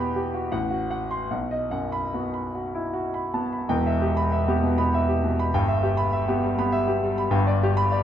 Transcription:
Already playing: E2 B2 B3 G4 E5 G5
0.00 B5
0.16 G4
0.34 F#4
0.52 A1 F#5
0.71 F#4
0.90 F#5
1.11 C6
1.31 B1 F#5
1.51 D#5
1.71 F#2 F#5
1.92 B5
2.14 B3 F#4
2.34 B5
2.55 F#4
2.74 E4
2.94 F#4
3.14 B5
3.34 B3 A5
3.52 B5
3.68 E1 E2 G5
3.86 E5
4.02 G4
4.17 B5
4.32 E5
4.48 B3 G4
4.63 B2
4.78 B3 B5
4.94 E5
5.09 G4
5.24 B2
5.39 B5
5.54 G1 G2 G5
5.68 E5
5.83 G4
5.97 B5
6.13 E5
6.28 B3 G4
6.43 G3
6.58 B3 B5
6.72 E5
6.88 G4
7.03 G3
7.18 B5
7.30 G1 G2 G5
7.47 D5
7.63 G4
7.77 B5
7.92 D5

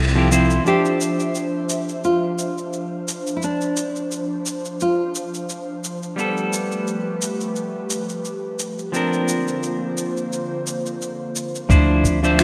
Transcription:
Already playing: C2 F3 C4 E4 A4
0.15 F3 C4 E4 G4
0.31 F3 C4 E4 C5, shaker
0.50 shaker
0.65 F3 D4 G4 C5 E5, shaker
0.69 C5
0.85 shaker
1.00 shaker
1.19 shaker
1.35 shaker
1.69 shaker
1.89 shaker
2.04 F4, shaker
2.38 shaker
2.58 shaker
2.73 shaker
3.08 shaker
3.27 shaker
3.37 E4
3.42 D4, shaker
3.61 shaker
3.76 shaker
3.96 shaker
4.11 shaker
4.46 shaker
4.65 shaker
4.80 F4, shaker
5.15 shaker
5.34 shaker
5.49 shaker
5.84 shaker
6.03 shaker
6.16 G3 A3 B3 G4 B4, shaker
6.20 A4
6.37 shaker
6.53 shaker
6.72 shaker
6.87 shaker
7.22 shaker
7.40 shaker
7.56 shaker
7.90 shaker
8.09 shaker
8.25 shaker
8.59 shaker
8.79 shaker
8.92 D3 F3 A#3 C4 D4 F4 C5, shaker
8.96 A#4
9.13 shaker
9.28 shaker
9.48 shaker
9.63 shaker
9.97 shaker
10.17 shaker
10.33 shaker
10.67 shaker
10.86 shaker
11.01 shaker
11.36 shaker
11.55 shaker
11.69 D2 D3 F3 C4 D4 E4 C5 E5, kick, shaker
12.04 kick, shaker
12.23 F3 D4 C5 E5, shaker
12.39 F4, finger snap, shaker

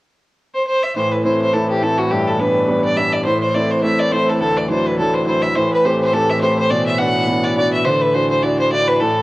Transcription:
0.54 C5
0.67 C5
0.83 E5
0.95 A2 E3 C5
1.11 B4
1.24 A3 C4 E4 C5
1.41 C5
1.53 A3 C4 E4 A4
1.70 G4
1.82 A3 C4 E4 A4
1.98 F#4
2.11 G2 G4
2.27 A4
2.39 G3 B3 D4 B4
2.68 G3 B3 D4
2.85 D5
2.96 G3 B3 D4 E5
3.12 D5
3.25 A2 C5
3.42 C5
3.54 A3 C4 E4 D5
3.71 C5
3.83 A3 C4 E4 E5
3.99 D5
4.12 A3 C4 E4 C5
4.29 A4
4.40 D2 A4
4.57 D5
4.69 F#3 D4 E4 C5
4.86 B4
4.98 F#3 D4 E4 A4
5.14 C5
5.26 F#3 D4 E4 C5
5.42 E5
5.55 A2 E3 C5
5.72 B4
5.84 A3 C4 G4 C5
6.00 C5
6.13 A3 C4 G4 A4
6.30 E5
6.41 A3 C4 G4 C5
6.58 C5
6.70 B2 D5
6.86 E5
6.98 B3 D4 F#4 F#5
7.28 B3 D4 F#4
7.43 D5
7.56 B3 D4 F#4 D5
7.73 E5
7.85 D3 C5
8.01 B4
8.14 D4 E4 F#4 C5
8.30 C5
8.42 D4 E4 F#4 D5
8.59 C5
8.72 D4 E4 F#4 D5
8.88 B4
9.00 A2 A4

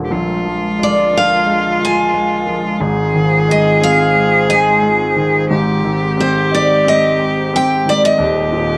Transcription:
Already playing: A#2 D3 G3 A#3
0.04 G4
0.11 A#1 A#2 G#3 F4 A#4
0.45 F3
0.79 G#3 D5
1.13 D4
1.17 F5
1.46 G#3
1.80 F4
1.84 G#5
2.14 G#3
2.47 F3
2.80 G#1 G#2 G#4
2.84 C4 C5
3.15 D#3
3.49 G#3 D#5
3.81 C4 F5
4.15 G#3
4.49 D#4 G#5
4.82 G#3
5.16 D#3
5.49 G#1 G#2 G4
5.84 D#3
6.17 C4 C5
6.52 D#4 D5
6.85 C4 D#5
7.19 G4
7.53 C4 G5
7.86 D#3 D5
8.05 D#5
8.18 D#1 D#2 A#3 G4 D#5
8.53 A#2

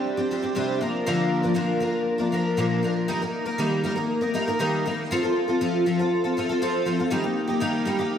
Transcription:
Already playing: G3 C4 D4 G4
0.17 C4 D4 G4
0.31 G3 C4 D4 G4
0.42 C4 D4 G4
0.55 C3 G3 C4 D4 G4
0.81 F3 A#3 D4 A#4
1.06 A#2 D3 F3 A#3 D4 A#4
1.43 F3 A#3 D4 A#4
1.54 A#2 D3 F3 A#3 D4 A#4
1.80 F3 A#3 D4 A#4
2.18 F3 A#3 D4 A#4
2.32 F3 A#3 D4 A#4
2.57 A#2 D3 F3 A#3 D4 A#4
2.83 F3 A#3 D4 A#4
3.08 D#3 G3 A#3 D#4 A#4
3.22 A#3 D#4 A#4
3.46 A#3 D#4 A#4
3.58 D#3 G3 A#3 D#4 A#4
3.84 G3 A#3 D#4 A#4
3.96 A#3 D#4 A#4
4.21 A#3 D#4 A#4
4.34 G3 A#3 D#4 A#4
4.47 A#3 D#4 A#4
4.59 D#3 G3 A#3 D#4 A#4
4.86 G3 A#3 D#4 A#4
5.11 F3 C4 F4 A4
5.23 C4 F4 A4
5.48 C4 F4 A4
5.61 F3 C4 F4 A4
5.86 F3 C4 F4 A4
5.99 C4 F4 A4
6.24 C4 F4 A4
6.37 F3 C4 F4 A4
6.49 C4 F4 A4
6.62 F3 C4 F4 A4
6.85 F3 C4 F4 A4
6.99 C4 F4 A4
7.10 D#3 G3 A#3 D#4 G4
7.23 A#3 D#4 G4
7.48 A#3 D#4 G4
7.60 D#3 G3 A#3 D#4 G4
7.85 G3 A#3 D#4 G4
7.99 A#3 D#4 G4

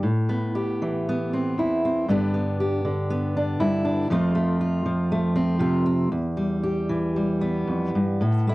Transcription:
0.03 A2
0.29 B3
0.55 G4
0.82 E3
1.09 B3
1.33 C4
1.58 E2 E4
1.85 C4
2.08 G2 D3 B3 D4 G4
2.34 B3
2.60 G4
2.85 D3
3.10 B3
3.37 D4
3.60 G2 E4
3.85 D4
4.10 F2 F3 A3 C4 F4
4.35 A3
4.61 F4
4.86 F3
5.12 A3
5.36 C4
5.59 C3 F4
5.86 C4
6.12 E2
6.37 G3
6.63 G4
6.89 E3
7.16 G3
7.41 B3
7.67 F2
7.95 G2
8.21 A2 A4
8.47 A3 E4

